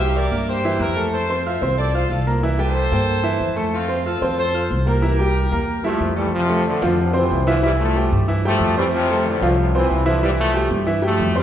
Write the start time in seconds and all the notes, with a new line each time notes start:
Already playing: C2 C5 E5
0.00 G3 G4 G5
0.16 A#4 D5
0.31 G2 A#3 A#4 A#5
0.49 G4 C5
0.65 E3 E4 E5
0.79 F2 G4 A#4
0.96 A3 A4 A5
1.13 A4 C5
1.30 C4 C5 C6
1.45 F4 C5 E5 F5 F6
1.61 C2 C4 C5 C6
1.78 A4 D5
1.94 F4 A4 C5 F5 F6
2.10 C2 F4 A4
2.27 A#3 A#4 A#5
2.43 E3 E4 E5
2.58 G3 G4 A4 C5 G5
2.91 G2 A#3 C5 G5
3.23 E3 E4 E5
3.40 F2
3.56 A3 A4 A5
3.73 C4 F4
3.88 C4 C5 C6
4.06 F4 A4 F5 F6
4.22 F2 C4 C5 C6
4.38 A4 C5
4.54 F4 F5 F6
4.71 C2
4.86 A#3 G4 A#4 A#5
5.02 E3 E4 E5
5.19 G3 G4 G5
5.51 E2 A#3 A#4 A#5
5.83 F3 G3 A3 E4 E5
6.00 F2
6.16 E3 G3 A3 A4 A5
6.33 C3 F3
6.49 A3 A4 A5
6.66 A2 D3
6.82 F2 F3 F4 F5
6.98 A2 C3
7.13 C3 E3 C4 C5 C6
7.31 C2
7.47 D3 E3 F3 E4 E5
7.63 E3 G3 E4 E5
7.79 F3 A3
7.96 G3 G4 G5
8.12 G2
8.28 E3 E4 E5
8.45 F3 G3 A3 G4 G5
8.60 F2
8.77 E3 G3 C4 C5 C6
8.93 C3 F3
9.09 A3 A4 A5
9.26 A2 D3
9.41 C2 F3 F4 F5
9.57 A2 C3
9.74 C3 E3 C4 C5 C6
9.90 C2
10.06 D3 E3 F3 E4 E5
10.23 E3 G3 E4 E5
10.39 F3 A3
10.54 G3 G4 G5
10.70 G2
10.86 E3 E4 E5
11.02 F3 G3 A3 G4 G5
11.20 F2
11.36 E3 G3 C4 C5 C6